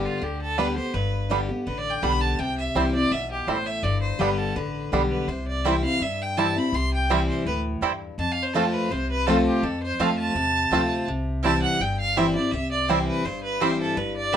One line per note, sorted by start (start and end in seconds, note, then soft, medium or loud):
0.00 0.19 G2 medium
0.00 0.20 D3 medium
0.00 0.20 G3 medium
0.00 0.21 B3 loud
0.00 0.21 G4 medium
0.05 0.24 F4 medium
0.22 0.78 D2 medium
0.22 0.57 D3 medium
0.22 0.41 G4 medium
0.41 0.59 A4 loud
0.58 0.76 D3 medium
0.58 0.67 G3 medium
0.58 0.77 G3 medium
0.58 0.67 B3 medium
0.58 0.77 B3 medium
0.58 0.67 D4 medium
0.58 0.75 G4 loud
0.58 0.75 B4 medium
0.76 0.94 B3 soft
0.76 0.93 G4 medium
0.76 0.95 C5 medium
0.93 1.50 G1 medium
0.93 1.63 G2 medium
0.93 1.30 B4 medium
1.30 1.48 D3 medium
1.30 1.49 G3 loud
1.30 1.39 G3 medium
1.30 1.49 B3 loud
1.30 1.39 B3 medium
1.30 1.39 D4 medium
1.30 1.48 G4 medium
1.49 1.67 B3 soft
1.49 1.66 G4 medium
1.66 1.98 A1 medium
1.66 2.01 D3 medium
1.66 1.79 B4 medium
1.78 1.92 D5 loud
1.90 2.04 G5 loud
2.02 2.34 B1 medium
2.02 2.37 D3 medium
2.02 2.37 G3 loud
2.02 2.11 G3 medium
2.02 2.38 B3 loud
2.02 2.12 B3 medium
2.02 2.12 D4 medium
2.02 2.38 G4 medium
2.02 2.22 B5 loud
2.21 2.41 A5 medium
2.39 2.67 C2 medium
2.39 3.08 C3 loud
2.39 2.57 G5 loud
2.58 2.77 E5 medium
2.75 3.06 C2 medium
2.75 2.93 E3 medium
2.75 2.84 G3 medium
2.75 2.94 G3 loud
2.75 2.94 C4 medium
2.75 2.84 C4 medium
2.75 2.84 E4 medium
2.75 2.92 E4 loud
2.75 2.93 C5 medium
2.94 3.11 C4 medium
2.94 3.11 E4 medium
2.94 3.13 D5 loud
3.11 3.42 B1 medium
3.11 3.46 B2 medium
3.11 3.31 E5 loud
3.31 3.49 G4 medium
3.47 3.78 A1 medium
3.47 3.82 A2 medium
3.47 3.56 G3 medium
3.47 3.56 C4 medium
3.47 3.57 E4 medium
3.47 3.68 C5 medium
3.66 3.84 E5 loud
3.83 4.11 G1 medium
3.83 4.53 G2 loud
3.83 4.01 D5 medium
4.01 4.21 C5 medium
4.19 4.51 G1 medium
4.19 4.54 D3 loud
4.19 4.54 G3 loud
4.19 4.29 G3 medium
4.19 4.54 B3 medium
4.19 4.29 B3 medium
4.19 4.29 D4 medium
4.19 4.55 G4 loud
4.19 4.39 B4 medium
4.37 4.57 A4 medium
4.55 4.87 A1 medium
4.55 4.91 D3 medium
4.55 4.92 B4 medium
4.92 5.23 B1 medium
4.92 5.27 D3 medium
4.92 5.27 G3 medium
4.92 5.01 G3 medium
4.92 5.27 B3 loud
4.92 5.01 B3 medium
4.92 5.01 D4 medium
4.92 5.28 G4 medium
5.10 5.29 B4 medium
5.27 5.84 C2 loud
5.27 5.98 C3 medium
5.27 5.47 C5 medium
5.47 5.66 D5 medium
5.64 5.83 E3 medium
5.64 5.74 G3 medium
5.64 5.83 G3 medium
5.64 5.74 C4 medium
5.64 5.84 C4 medium
5.64 5.74 C4 medium
5.64 5.75 E4 loud
5.64 5.82 E4 loud
5.64 5.74 E4 medium
5.64 5.75 C5 loud
5.64 5.84 E5 medium
5.64 5.75 G5 loud
5.83 6.01 C4 medium
5.83 6.00 E4 medium
5.83 6.04 F5 loud
6.00 6.57 G2 medium
6.00 6.70 G2 medium
6.00 6.24 E5 loud
6.22 6.39 G5 loud
6.37 6.55 E3 medium
6.37 6.56 G3 medium
6.37 6.46 G3 medium
6.37 6.47 C4 medium
6.37 6.56 C4 medium
6.37 6.46 C4 medium
6.37 6.47 E4 medium
6.37 6.46 E4 medium
6.37 6.55 E4 loud
6.37 6.47 C5 medium
6.37 6.47 G5 loud
6.37 6.59 A5 medium
6.56 6.74 C4 medium
6.56 6.73 E4 medium
6.56 6.76 B5 medium
6.72 7.29 C2 loud
6.72 7.43 C3 loud
6.72 6.93 C6 loud
6.93 7.12 G5 loud
7.10 7.45 E3 medium
7.10 7.19 G3 medium
7.10 7.45 G3 loud
7.10 7.19 C4 medium
7.10 7.45 C4 loud
7.10 7.19 E4 medium
7.10 7.45 E4 loud
7.10 7.20 C5 medium
7.10 7.28 E5 medium
7.10 7.20 G5 medium
7.29 7.45 C5 medium
7.45 7.77 D2 medium
7.45 7.81 A2 medium
7.45 7.58 B4 medium
7.81 8.12 E2 medium
7.81 8.17 G2 medium
7.81 7.91 G3 medium
7.81 7.92 C4 medium
7.81 7.91 C4 medium
7.81 7.92 E4 loud
7.81 7.91 E4 medium
7.81 7.92 C5 medium
7.81 7.92 G5 loud
8.18 8.74 F2 medium
8.18 8.88 F2 loud
8.18 8.33 A5 medium
8.32 8.44 F5 loud
8.43 8.55 C5 medium
8.53 8.89 F3 medium
8.53 8.89 A3 medium
8.53 8.63 A3 medium
8.53 8.64 C4 medium
8.53 8.63 C4 medium
8.53 8.90 C4 loud
8.53 8.64 F4 medium
8.53 8.90 F4 loud
8.53 8.64 F4 medium
8.53 8.74 A4 medium
8.53 8.65 C5 medium
8.53 8.65 A5 loud
8.73 8.92 B4 loud
8.91 9.47 C2 medium
8.91 9.60 C3 medium
8.91 9.10 C5 medium
9.10 9.28 B4 loud
9.26 9.62 F3 medium
9.26 9.36 A3 medium
9.26 9.62 A3 loud
9.26 9.36 C4 medium
9.26 9.62 C4 medium
9.26 9.36 F4 medium
9.26 9.63 F4 loud
9.26 9.46 A4 medium
9.26 9.37 C5 loud
9.26 9.37 A5 medium
9.46 9.65 G4 medium
9.63 9.91 F2 medium
9.63 10.32 F2 medium
9.63 9.82 A4 medium
9.83 10.02 C5 medium
9.99 10.30 F2 medium
9.99 10.34 F3 loud
9.99 10.34 A3 loud
9.99 10.08 A3 medium
9.99 10.09 C4 medium
9.99 10.34 C4 medium
9.99 10.08 C4 medium
9.99 10.09 F4 loud
9.99 10.09 F4 medium
9.99 10.35 F4 loud
9.99 10.09 C5 medium
9.99 10.17 F5 medium
9.99 10.09 A5 loud
10.18 11.04 A5 loud
10.35 10.66 E2 medium
10.35 11.05 C3 medium
10.71 11.02 D2 medium
10.71 11.06 F3 medium
10.71 11.06 A3 medium
10.71 10.81 A3 medium
10.71 10.81 C4 medium
10.71 11.07 C4 medium
10.71 10.81 C4 medium
10.71 10.81 F4 medium
10.71 11.07 F4 loud
10.71 10.81 C5 medium
10.71 10.82 A5 medium
11.08 11.64 C2 medium
11.08 11.77 C3 medium
11.43 11.78 E3 medium
11.43 11.79 G3 medium
11.43 11.53 G3 medium
11.43 11.53 C4 medium
11.43 11.79 C4 medium
11.43 11.53 C4 medium
11.43 11.53 E4 medium
11.43 11.79 E4 loud
11.43 11.53 E4 medium
11.43 11.53 C5 medium
11.43 11.54 G5 medium
11.43 11.61 A5 loud
11.62 11.82 F#5 loud
11.80 12.36 G1 medium
11.80 12.50 G2 medium
11.80 11.99 G5 medium
12.00 12.18 F5 loud
12.16 12.35 E3 loud
12.16 12.25 G3 medium
12.16 12.35 G3 medium
12.16 12.26 C4 medium
12.16 12.25 C4 medium
12.16 12.35 C4 medium
12.16 12.26 E4 loud
12.16 12.25 E4 medium
12.16 12.34 E4 loud
12.16 12.26 C5 medium
12.16 12.34 E5 loud
12.16 12.26 G5 loud
12.35 12.53 C4 soft
12.35 12.52 E4 medium
12.35 12.53 D5 medium
12.51 13.08 C2 medium
12.51 13.22 C3 medium
12.51 12.71 E5 loud
12.71 12.91 D5 medium
12.88 13.23 E3 medium
12.88 12.98 G3 medium
12.88 13.24 G3 medium
12.88 12.98 C4 medium
12.88 13.24 C4 loud
12.88 12.98 E4 medium
12.88 13.24 E4 loud
12.88 12.98 C5 medium
12.88 13.07 C5 medium
12.88 12.99 G5 medium
13.08 13.26 B4 medium
13.24 13.81 G1 medium
13.24 13.94 G2 medium
13.24 13.43 C5 medium
13.43 13.63 B4 loud
13.60 13.96 E3 medium
13.60 13.70 G3 medium
13.60 13.96 G3 medium
13.60 13.70 C4 medium
13.60 13.96 C4 loud
13.60 13.70 E4 medium
13.60 13.96 E4 medium
13.60 13.71 C5 loud
13.60 13.80 C5 loud
13.60 13.71 G5 medium
13.81 13.98 A4 medium
13.96 14.37 G1 medium
13.96 14.37 G2 loud
13.96 14.16 B4 medium
14.16 14.34 D5 loud
14.33 14.37 D3 medium
14.33 14.37 G3 loud
14.33 14.37 B3 medium
14.33 14.37 G4 medium
14.33 14.37 E5 loud